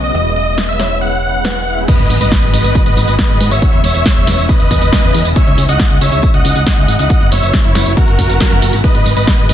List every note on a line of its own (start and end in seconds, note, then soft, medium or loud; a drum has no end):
0.00 0.12 B1 medium
0.00 0.32 D#5 medium
0.14 1.86 E1 medium
0.14 0.30 C#3 medium
0.14 0.30 G#3 medium
0.14 0.30 B3 medium
0.14 0.30 E4 medium
0.14 0.71 D#5 medium
0.36 0.64 D#5 medium
0.47 0.62 C#3 medium
0.47 0.62 G#3 medium
0.47 0.62 B3 medium
0.47 0.62 E4 medium
0.58 snare loud
0.69 0.84 C#3 medium
0.69 0.84 G#3 medium
0.69 0.84 B3 medium
0.69 0.84 E4 medium
0.69 0.97 E5 medium
0.80 1.36 C#5 medium
0.80 snare medium
0.90 1.06 C#3 medium
0.90 1.06 G#3 medium
0.90 1.06 B3 medium
0.90 1.06 E4 medium
1.01 1.80 F#5 loud
1.23 1.38 C#3 medium
1.23 1.38 G#3 medium
1.23 1.38 B3 medium
1.23 1.38 E4 medium
1.45 1.60 C#3 medium
1.45 1.60 G#3 medium
1.45 1.60 B3 medium
1.45 1.60 E4 medium
1.45 1.86 B4 medium
1.45 snare loud
1.67 1.82 C#3 medium
1.67 1.82 G#3 medium
1.67 1.82 B3 medium
1.67 1.82 E4 medium
1.88 2.03 D#3 medium
1.88 2.03 G#3 medium
1.88 2.03 B3 medium
1.88 2.03 F#4 medium
1.88 2.17 B4 medium
1.88 2.17 D#5 loud
1.88 kick loud
1.88 closed hi-hat medium
1.88 crash loud
1.88 tambourine soft
1.88 impact medium
1.99 2.08 G#1 medium
1.99 closed hi-hat medium
2.10 2.19 G#1 loud
2.10 open hi-hat loud
2.10 tambourine medium
2.21 2.30 G#1 medium
2.21 2.36 D#3 medium
2.21 2.36 G#3 medium
2.21 2.36 B3 medium
2.21 2.36 F#4 medium
2.21 2.49 B4 medium
2.21 2.49 D#5 loud
2.21 closed hi-hat medium
2.21 tambourine soft
2.32 kick loud
2.32 snare loud
2.32 closed hi-hat medium
2.43 2.52 G#1 medium
2.43 2.58 D#3 medium
2.43 2.58 G#3 medium
2.43 2.58 B3 medium
2.43 2.58 F#4 medium
2.43 closed hi-hat medium
2.53 2.63 G#1 loud
2.53 2.82 B4 medium
2.53 2.82 D#5 loud
2.53 open hi-hat loud
2.53 tambourine medium
2.64 2.74 G#1 medium
2.64 2.80 D#3 loud
2.64 2.80 G#3 medium
2.64 2.80 B3 loud
2.64 2.80 F#4 medium
2.64 closed hi-hat medium
2.64 tambourine soft
2.75 kick loud
2.75 closed hi-hat medium
2.75 tambourine soft
2.86 2.95 G#1 medium
2.86 3.14 B4 medium
2.86 3.14 D#5 medium
2.86 closed hi-hat medium
2.97 3.06 G#1 loud
2.97 3.12 D#3 medium
2.97 3.12 G#3 medium
2.97 3.12 B3 medium
2.97 3.12 F#4 medium
2.97 open hi-hat loud
2.97 tambourine medium
3.08 3.17 G#1 medium
3.08 closed hi-hat medium
3.08 tambourine soft
3.19 3.34 D#3 medium
3.19 3.34 G#3 medium
3.19 3.34 B3 medium
3.19 3.34 F#4 medium
3.19 3.47 B4 medium
3.19 3.47 D#5 medium
3.19 kick loud
3.19 snare loud
3.19 closed hi-hat medium
3.19 tambourine soft
3.30 3.39 G#1 medium
3.30 closed hi-hat medium
3.40 3.50 G#2 loud
3.40 3.56 D#3 loud
3.40 3.56 G#3 loud
3.40 3.56 B3 medium
3.40 3.56 F#4 medium
3.40 open hi-hat loud
3.40 tambourine medium
3.51 3.60 G#1 medium
3.51 3.80 C#5 medium
3.51 3.80 E5 medium
3.51 closed hi-hat medium
3.51 tambourine soft
3.62 3.77 C#3 loud
3.62 3.77 G#3 medium
3.62 3.77 B3 loud
3.62 3.77 E4 medium
3.62 kick loud
3.62 closed hi-hat medium
3.62 tambourine soft
3.73 3.82 E1 medium
3.73 closed hi-hat medium
3.84 3.93 E1 loud
3.84 4.12 C#5 medium
3.84 4.12 E5 loud
3.84 open hi-hat loud
3.84 tambourine medium
3.95 4.04 E1 medium
3.95 4.10 C#3 medium
3.95 4.10 G#3 medium
3.95 4.10 B3 medium
3.95 4.10 E4 medium
3.95 closed hi-hat medium
3.95 tambourine soft
4.06 kick loud
4.06 snare loud
4.06 closed hi-hat medium
4.06 tambourine soft
4.16 4.26 E1 medium
4.16 4.32 C#3 medium
4.16 4.32 G#3 medium
4.16 4.32 B3 medium
4.16 4.32 E4 medium
4.16 4.45 C#5 medium
4.16 4.45 E5 medium
4.16 closed hi-hat medium
4.27 4.37 E1 loud
4.27 snare medium
4.27 open hi-hat loud
4.27 tambourine medium
4.38 4.47 E1 medium
4.38 4.53 C#3 medium
4.38 4.54 G#3 medium
4.38 4.53 B3 medium
4.38 4.53 E4 medium
4.38 closed hi-hat medium
4.38 tambourine soft
4.49 5.27 B4 medium
4.49 5.27 D#5 loud
4.49 kick loud
4.49 closed hi-hat medium
4.49 tambourine soft
4.60 4.69 E1 medium
4.60 closed hi-hat medium
4.71 4.80 E1 loud
4.71 4.86 C#3 loud
4.71 4.86 G#3 medium
4.71 4.86 B3 medium
4.71 4.86 E4 medium
4.71 kick medium
4.71 open hi-hat loud
4.71 tambourine medium
4.82 4.91 E1 medium
4.82 closed hi-hat medium
4.82 tambourine soft
4.92 5.08 C#3 medium
4.92 5.08 G#3 loud
4.92 5.08 B3 medium
4.92 5.08 E4 medium
4.92 kick loud
4.92 snare loud
4.92 open hi-hat medium
4.92 tambourine soft
5.03 5.13 E1 medium
5.03 closed hi-hat medium
5.14 5.24 E2 loud
5.14 5.29 C#3 loud
5.14 5.29 G#3 loud
5.14 5.29 B3 medium
5.14 5.29 E4 medium
5.14 open hi-hat loud
5.14 tambourine medium
5.25 5.34 E1 medium
5.25 closed hi-hat medium
5.25 tambourine soft
5.36 5.51 C#3 medium
5.36 5.51 G#3 loud
5.36 5.51 D#4 medium
5.36 5.51 E4 medium
5.36 5.64 C#5 medium
5.36 5.64 E5 loud
5.36 kick loud
5.36 closed hi-hat medium
5.36 tambourine soft
5.47 5.56 C#2 medium
5.47 closed hi-hat medium
5.58 5.67 C#2 loud
5.58 open hi-hat loud
5.58 tambourine medium
5.69 5.78 C#2 medium
5.69 5.84 C#3 medium
5.69 5.84 G#3 medium
5.69 5.84 D#4 medium
5.69 5.84 E4 medium
5.69 5.97 D#5 medium
5.69 5.97 F#5 loud
5.69 closed hi-hat medium
5.69 tambourine soft
5.80 kick loud
5.80 snare loud
5.80 closed hi-hat medium
5.80 tambourine soft
5.90 6.00 C#2 medium
5.90 6.06 C#3 medium
5.90 6.06 G#3 medium
5.90 6.06 D#4 medium
5.90 6.06 E4 medium
5.90 closed hi-hat medium
6.01 6.11 C#2 loud
6.01 6.30 C#5 medium
6.01 6.30 E5 loud
6.01 open hi-hat loud
6.01 tambourine medium
6.12 6.21 C#2 medium
6.12 6.27 C#3 medium
6.12 6.27 G#3 medium
6.12 6.27 D#4 medium
6.12 6.27 E4 medium
6.12 closed hi-hat medium
6.12 tambourine soft
6.23 kick loud
6.23 closed hi-hat medium
6.23 tambourine soft
6.34 6.43 C#2 medium
6.34 6.62 D#5 medium
6.34 6.62 F#5 medium
6.34 closed hi-hat medium
6.45 6.54 C#2 loud
6.45 6.60 C#3 medium
6.45 6.60 G#3 medium
6.45 6.60 D#4 medium
6.45 6.60 E4 medium
6.45 open hi-hat loud
6.45 tambourine medium
6.56 6.65 C#2 loud
6.56 closed hi-hat soft
6.56 tambourine soft
6.67 6.82 C#3 medium
6.67 6.82 G#3 medium
6.67 6.82 D#4 loud
6.67 6.82 E4 medium
6.67 6.95 D#5 medium
6.67 6.95 F#5 loud
6.67 kick loud
6.67 snare loud
6.67 closed hi-hat medium
6.67 tambourine soft
6.77 6.87 C#2 medium
6.77 closed hi-hat medium
6.88 6.97 G#1 loud
6.88 7.04 C#3 medium
6.88 7.04 G#3 medium
6.88 7.04 D#4 loud
6.88 7.04 E4 loud
6.88 open hi-hat loud
6.88 tambourine medium
6.99 7.08 C#2 medium
6.99 7.28 D#5 medium
6.99 7.28 F#5 medium
6.99 closed hi-hat medium
6.99 tambourine soft
7.10 7.25 C#3 medium
7.10 7.25 F#3 medium
7.10 7.25 B3 medium
7.10 7.25 E4 medium
7.10 kick loud
7.10 closed hi-hat medium
7.10 tambourine soft
7.21 7.30 F#1 medium
7.21 closed hi-hat medium
7.32 7.41 F#1 loud
7.32 7.60 C#5 medium
7.32 7.60 E5 loud
7.32 open hi-hat loud
7.32 tambourine medium
7.43 7.52 F#1 medium
7.43 7.58 C#3 medium
7.43 7.58 F#3 medium
7.43 7.58 B3 medium
7.43 7.58 E4 medium
7.43 closed hi-hat medium
7.43 tambourine soft
7.54 kick loud
7.54 snare loud
7.54 closed hi-hat medium
7.54 tambourine soft
7.64 7.74 F#1 medium
7.64 7.80 C#3 medium
7.64 7.80 F#3 medium
7.64 7.80 B3 medium
7.64 7.80 E4 medium
7.64 7.93 E4 medium
7.64 7.93 C#5 medium
7.64 closed hi-hat medium
7.75 7.85 F#1 loud
7.75 snare medium
7.75 open hi-hat loud
7.75 tambourine medium
7.86 7.95 F#1 medium
7.86 8.01 C#3 loud
7.86 8.01 F#3 medium
7.86 8.01 B3 loud
7.86 8.01 E4 medium
7.86 closed hi-hat medium
7.86 tambourine soft
7.97 8.75 F#4 medium
7.97 8.75 A#4 loud
7.97 kick loud
7.97 closed hi-hat medium
7.97 tambourine soft
8.08 8.17 F#1 medium
8.08 closed hi-hat medium
8.19 8.28 F#1 loud
8.19 8.34 C#3 medium
8.19 8.34 F#3 medium
8.19 8.34 B3 medium
8.19 8.34 E4 medium
8.19 kick medium
8.19 open hi-hat loud
8.19 tambourine medium
8.30 8.39 F#1 medium
8.30 closed hi-hat medium
8.30 tambourine soft
8.40 8.56 C#3 medium
8.40 8.56 F#3 medium
8.40 8.56 B3 medium
8.40 8.56 E4 medium
8.40 kick loud
8.40 snare loud
8.40 open hi-hat medium
8.40 tambourine soft
8.51 8.61 F#1 medium
8.51 closed hi-hat soft
8.62 8.71 F#1 loud
8.62 8.77 C#3 medium
8.62 8.77 F#3 loud
8.62 8.77 B3 loud
8.62 8.78 E4 medium
8.62 open hi-hat loud
8.62 tambourine medium
8.73 8.82 G#1 medium
8.73 closed hi-hat soft
8.73 tambourine soft
8.84 8.99 D#3 medium
8.84 8.99 G#3 loud
8.84 8.99 B3 loud
8.84 8.99 F#4 medium
8.84 9.12 B4 medium
8.84 9.12 D#5 loud
8.84 kick loud
8.84 closed hi-hat medium
8.84 tambourine soft
8.95 9.04 G#1 medium
8.95 closed hi-hat soft
9.06 9.15 G#1 loud
9.06 open hi-hat loud
9.06 tambourine medium
9.17 9.26 G#1 medium
9.17 9.32 D#3 medium
9.17 9.32 G#3 medium
9.17 9.32 B3 medium
9.17 9.32 F#4 medium
9.17 9.45 B4 medium
9.17 9.45 D#5 loud
9.17 closed hi-hat medium
9.17 tambourine soft
9.27 kick loud
9.27 snare loud
9.27 closed hi-hat medium
9.27 tambourine soft
9.38 9.48 G#1 medium
9.38 9.54 D#3 medium
9.38 9.54 G#3 medium
9.38 9.54 B3 medium
9.38 9.54 F#4 medium
9.38 closed hi-hat medium
9.49 9.54 G#1 loud
9.49 9.54 B4 medium
9.49 9.54 D#5 loud
9.49 open hi-hat loud
9.49 tambourine medium